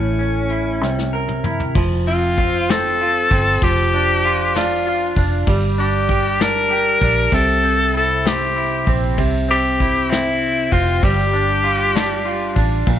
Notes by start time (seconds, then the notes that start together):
Already playing: A1 A2 C#4
0.18 C#4, closed hi-hat
0.49 E4, closed hi-hat
0.81 C2 C3, snare
0.99 snare
1.13 A#4
1.28 mid tom
1.44 E4, mid tom
1.60 floor tom
1.75 F1 F3, kick, crash
2.06 C4 F4, ride
2.37 F4, kick, ride
2.69 C4 A4, snare, ride
2.99 F4, ride
3.31 G1 C4, kick, ride
3.62 F1 F3 G4, kick, ride
3.92 D4, ride
4.23 F4, ride
4.55 D4 F4, snare, ride
4.85 F4, ride
5.16 F1 D4, kick, ride
5.47 G1 G3, kick, ride
5.78 D4 G4, ride
6.09 G4, kick, ride
6.39 D4 A#4, snare, ride
6.70 G4, ride
7.01 A#1 D4, kick, ride
7.32 C2 C3 A4, kick, ride
7.63 C4, ride
7.94 E4 A4, ride
8.25 C4 G4, snare, ride
8.56 E4, ride
8.87 A#1 C4, kick, ride
9.18 C2 C3, kick, ride
9.49 C4 G4, ride
9.80 E4, kick, ride
10.10 C4 E4, snare, ride
10.41 ride
10.72 F1 C4 F4, kick, ride
11.03 G1 G3 G4, kick, ride
11.33 D4, ride
11.64 F4, ride
11.95 D4, snare, ride
12.25 F4, ride
12.56 A1 D4, kick, ride
12.87 A#1 A#2, kick, ride